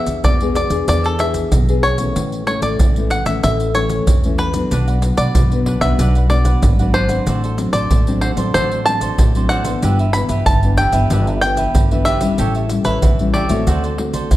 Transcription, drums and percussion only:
0.06 pandeiro medium
0.06 maracas medium
0.06 surdo soft
0.24 pandeiro medium
0.24 maracas medium
0.24 surdo medium
0.40 pandeiro soft
0.40 maracas soft
0.55 pandeiro medium
0.55 maracas medium
0.70 pandeiro medium
0.70 maracas medium
0.70 surdo soft
0.88 pandeiro medium
0.88 maracas medium
0.88 surdo medium
1.04 pandeiro soft
1.04 maracas soft
1.19 pandeiro medium
1.19 maracas medium
1.34 pandeiro medium
1.34 maracas medium
1.34 surdo soft
1.52 pandeiro medium
1.52 maracas medium
1.52 surdo medium
1.69 pandeiro soft
1.69 maracas soft
1.69 surdo soft
1.83 pandeiro medium
1.98 pandeiro medium
1.98 maracas medium
2.16 pandeiro medium
2.16 maracas medium
2.16 surdo medium
2.32 pandeiro soft
2.32 maracas soft
2.47 pandeiro medium
2.62 pandeiro medium
2.62 maracas medium
2.62 surdo soft
2.79 pandeiro medium
2.79 maracas medium
2.79 surdo loud
2.96 pandeiro soft
2.96 maracas soft
3.10 pandeiro medium
3.10 maracas medium
3.26 pandeiro medium
3.26 maracas medium
3.26 surdo soft
3.43 pandeiro medium
3.43 maracas medium
3.43 surdo medium
3.60 pandeiro soft
3.60 maracas soft
3.75 pandeiro medium
3.75 maracas medium
3.90 pandeiro medium
3.90 maracas medium
3.90 surdo soft
4.07 pandeiro medium
4.07 maracas medium
4.07 surdo medium
4.24 pandeiro soft
4.24 maracas soft
4.24 surdo soft
4.38 pandeiro medium
4.38 surdo soft
4.54 pandeiro medium
4.54 maracas medium
4.71 pandeiro medium
4.71 maracas medium
4.71 surdo medium
4.88 pandeiro soft
4.88 maracas soft
5.02 pandeiro medium
5.02 maracas medium
5.17 pandeiro medium
5.17 maracas medium
5.17 surdo soft
5.35 pandeiro medium
5.35 maracas medium
5.35 surdo loud
5.52 pandeiro soft
5.52 maracas soft
5.66 pandeiro medium
5.81 pandeiro medium
5.81 maracas medium
5.81 surdo soft
5.99 pandeiro medium
5.99 maracas medium
5.99 surdo medium
6.15 pandeiro soft
6.15 maracas soft
6.30 pandeiro medium
6.45 pandeiro medium
6.45 maracas medium
6.45 surdo soft
6.62 pandeiro medium
6.62 maracas medium
6.62 surdo loud
6.79 pandeiro soft
6.79 maracas soft
6.79 surdo soft
6.94 pandeiro medium
6.94 surdo soft
7.09 pandeiro medium
7.09 maracas medium
7.27 pandeiro medium
7.27 maracas medium
7.27 surdo medium
7.44 pandeiro soft
7.44 maracas soft
7.58 pandeiro medium
7.58 maracas medium
7.73 pandeiro medium
7.73 maracas medium
7.73 surdo soft
7.91 pandeiro medium
7.91 maracas medium
7.91 surdo medium
8.07 pandeiro soft
8.07 maracas soft
8.22 pandeiro medium
8.37 pandeiro soft
8.37 maracas medium
8.37 surdo soft
8.55 pandeiro medium
8.55 maracas medium
8.55 surdo medium
8.71 pandeiro soft
8.71 maracas soft
8.86 pandeiro medium
8.86 maracas medium
9.01 pandeiro medium
9.01 maracas medium
9.01 surdo soft
9.18 pandeiro medium
9.18 maracas medium
9.18 surdo medium
9.35 pandeiro soft
9.35 maracas soft
9.35 surdo soft
9.50 pandeiro medium
9.50 maracas medium
9.50 surdo soft
9.65 pandeiro medium
9.65 maracas medium
9.83 pandeiro medium
9.83 maracas medium
9.83 surdo medium
9.99 pandeiro soft
9.99 maracas soft
10.14 pandeiro medium
10.14 maracas medium
10.29 pandeiro medium
10.29 maracas medium
10.29 surdo soft
10.46 pandeiro medium
10.46 maracas medium
10.46 surdo loud
10.63 pandeiro soft
10.63 maracas soft
10.77 pandeiro medium
10.77 maracas medium
10.92 pandeiro medium
10.92 maracas medium
10.92 surdo soft
11.10 pandeiro medium
11.10 maracas medium
11.10 surdo medium
11.27 pandeiro soft
11.27 maracas soft
11.42 pandeiro medium
11.42 maracas medium
11.57 pandeiro medium
11.57 maracas medium
11.57 surdo soft
11.75 pandeiro medium
11.75 maracas medium
11.75 surdo medium
11.91 pandeiro soft
11.91 maracas soft
11.91 surdo soft
12.06 pandeiro medium
12.06 maracas medium
12.21 pandeiro medium
12.21 maracas medium
12.38 pandeiro medium
12.38 maracas medium
12.38 surdo medium
12.55 pandeiro soft
12.55 maracas soft
12.69 pandeiro medium
12.69 maracas medium
12.85 pandeiro medium
12.85 maracas medium
12.85 surdo soft
13.02 pandeiro medium
13.02 maracas medium
13.02 surdo loud
13.19 pandeiro soft
13.19 maracas soft
13.34 pandeiro medium
13.49 pandeiro medium
13.49 maracas medium
13.49 surdo soft
13.67 pandeiro medium
13.67 maracas medium
13.67 surdo medium
13.84 pandeiro soft
13.84 maracas soft
13.98 pandeiro medium
14.14 pandeiro medium
14.14 maracas medium
14.14 surdo soft
14.31 pandeiro medium
14.31 maracas medium
14.31 surdo medium

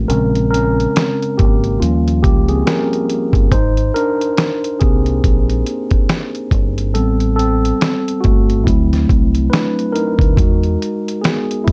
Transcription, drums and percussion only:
0.10 closed hi-hat medium
0.35 closed hi-hat soft
0.54 closed hi-hat medium
0.80 closed hi-hat soft
0.96 snare loud
0.96 closed hi-hat medium
1.22 closed hi-hat soft
1.39 kick loud
1.39 closed hi-hat medium
1.64 closed hi-hat soft
1.82 closed hi-hat medium
2.08 closed hi-hat soft
2.24 kick medium
2.24 closed hi-hat medium
2.48 closed hi-hat soft
2.67 snare loud
2.67 closed hi-hat medium
2.93 closed hi-hat soft
3.10 closed hi-hat medium
3.33 kick medium
3.33 closed hi-hat medium
3.52 kick loud
3.52 closed hi-hat medium
3.77 closed hi-hat soft
3.96 closed hi-hat medium
4.21 closed hi-hat soft
4.37 snare loud
4.37 closed hi-hat medium
4.64 closed hi-hat soft
4.81 kick loud
4.81 closed hi-hat medium
5.06 closed hi-hat soft
5.24 kick medium
5.24 closed hi-hat medium
5.50 closed hi-hat soft
5.66 closed hi-hat medium
5.91 kick medium
5.91 closed hi-hat soft
6.09 snare loud
6.09 closed hi-hat medium
6.35 closed hi-hat soft
6.51 kick medium
6.51 closed hi-hat medium
6.78 closed hi-hat medium
6.95 closed hi-hat medium
7.20 closed hi-hat soft
7.39 closed hi-hat medium
7.65 closed hi-hat soft
7.81 snare loud
7.81 closed hi-hat medium
8.08 closed hi-hat soft
8.24 kick loud
8.24 closed hi-hat medium
8.50 closed hi-hat soft
8.67 kick medium
8.67 closed hi-hat medium
8.93 snare soft
8.93 closed hi-hat soft
9.09 kick medium
9.09 closed hi-hat medium
9.35 closed hi-hat soft
9.53 snare loud
9.53 closed hi-hat medium
9.79 closed hi-hat soft
9.96 closed hi-hat medium
10.19 kick medium
10.19 closed hi-hat soft
10.37 kick loud
10.37 closed hi-hat medium
10.63 closed hi-hat soft
10.82 closed hi-hat medium
11.08 closed hi-hat medium
11.24 snare loud
11.24 closed hi-hat medium
11.51 closed hi-hat soft
11.68 kick loud
11.68 closed hi-hat medium

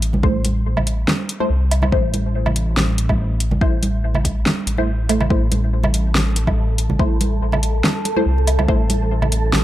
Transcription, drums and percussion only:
0.02 closed hi-hat medium
0.13 high conga medium
0.13 low conga medium
0.23 kick loud
0.45 closed hi-hat medium
0.45 high conga medium
0.77 high conga medium
0.77 low conga medium
0.77 low woodblock medium
0.87 closed hi-hat medium
1.07 snare loud
1.07 high conga medium
1.29 closed hi-hat medium
1.40 high conga medium
1.71 closed hi-hat medium
1.71 low woodblock medium
1.82 high conga medium
1.82 low conga medium
1.82 low woodblock medium
1.92 kick loud
2.14 closed hi-hat medium
2.14 high conga medium
2.46 high conga medium
2.46 low conga medium
2.46 low woodblock medium
2.56 closed hi-hat medium
2.77 snare loud
2.77 high conga medium
2.98 closed hi-hat medium
3.09 kick medium
3.09 high conga medium
3.09 low woodblock medium
3.40 closed hi-hat medium
3.51 high conga medium
3.51 low conga medium
3.61 kick loud
3.83 closed hi-hat medium
3.83 high conga medium
4.15 high conga medium
4.15 low conga medium
4.15 low woodblock medium
4.25 kick medium
4.25 closed hi-hat medium
4.46 snare loud
4.46 high conga medium
4.67 closed hi-hat medium
4.78 high conga medium
5.09 closed hi-hat medium
5.09 low woodblock medium
5.20 high conga medium
5.20 low conga medium
5.20 low woodblock medium
5.30 kick loud
5.51 closed hi-hat medium
5.51 high conga medium
5.83 muted conga medium
5.83 high conga medium
5.83 low conga medium
5.83 low woodblock medium
5.94 closed hi-hat medium
6.15 snare loud
6.15 high conga medium
6.36 closed hi-hat medium
6.36 muted conga soft
6.47 kick medium
6.47 high conga medium
6.47 low woodblock medium
6.78 closed hi-hat medium
6.90 high conga medium
6.90 low conga medium
6.99 kick loud
7.21 closed hi-hat medium
7.21 high conga medium
7.52 muted conga medium
7.52 high conga medium
7.52 low conga medium
7.52 low woodblock medium
7.63 closed hi-hat medium
7.84 snare loud
7.84 high conga medium
8.05 closed hi-hat medium
8.05 muted conga soft
8.16 high conga medium
8.38 muted conga soft
8.47 closed hi-hat medium
8.47 muted conga soft
8.47 low woodblock medium
8.59 high conga medium
8.59 low conga medium
8.59 low woodblock medium
8.68 kick loud
8.90 closed hi-hat medium
8.90 high conga loud
9.22 muted conga medium
9.22 high conga medium
9.22 low conga medium
9.22 low woodblock medium
9.32 closed hi-hat medium
9.52 snare loud
9.52 high conga loud

